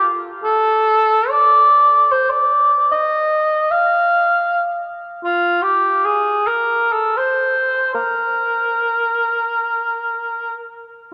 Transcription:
0.44 1.31 A4 medium
1.30 2.13 D5 medium
2.12 2.31 C5 medium
2.30 2.89 D5 medium
2.91 3.73 D#5 medium
3.71 4.86 F5 medium
5.24 5.64 F4 medium
5.62 6.07 G4 medium
6.05 6.49 G#4 medium
6.47 6.94 A#4 soft
6.92 7.19 A4 soft
7.17 7.94 C5 medium
7.94 10.57 A#4 soft

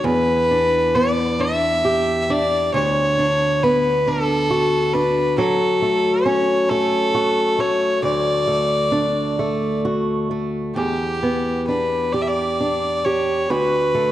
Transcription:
0.00 2.74 E2 medium
0.00 0.13 A3 soft
0.00 0.51 D4 soft
0.00 0.13 F#4 soft
0.05 0.97 B4 medium
0.51 1.39 D4 soft
0.95 3.63 B3 soft
0.95 1.42 D5 medium
1.40 2.29 D4 soft
1.40 2.22 E5 medium
1.85 2.83 G4 soft
2.22 2.32 E5 soft
2.30 3.18 D4 soft
2.30 2.73 D5 medium
2.74 5.37 D2 medium
2.74 3.65 C#5 medium
3.19 4.06 D4 soft
3.63 5.46 B3 soft
3.63 4.09 B4 medium
4.07 4.93 D4 medium
4.07 4.95 A4 medium
4.50 7.14 F#4 soft
4.94 5.46 D4 medium
4.94 5.37 B4 medium
5.38 8.88 F#3 medium
5.38 6.27 A4 medium
5.82 6.70 A3 soft
6.25 8.12 C#4 medium
6.25 6.71 C#5 medium
6.70 7.58 A3 medium
6.70 7.61 A4 medium
7.15 9.84 F#4 soft
7.59 8.47 A3 soft
7.59 8.03 C#5 medium
8.03 10.76 D2 medium
8.03 9.80 D5 medium
8.48 9.38 A3 soft
8.92 11.22 D4 soft
9.39 10.30 A3 medium
9.85 10.77 F#4 soft
10.31 10.86 A3 soft
10.76 13.50 E2 medium
10.76 11.64 G4 medium
10.76 12.13 G4 soft
11.23 13.60 B3 soft
11.67 12.60 D4 soft
11.67 12.14 B4 medium
12.13 13.05 G4 soft
12.13 12.23 D5 medium
12.22 12.29 E5 soft
12.28 13.06 D5 medium
12.60 14.12 D4 soft
13.05 13.50 G4 soft
13.05 13.51 C#5 medium
13.50 14.12 D2 medium
13.50 14.12 F#4 medium
13.50 14.12 B4 medium
13.95 14.12 A3 soft

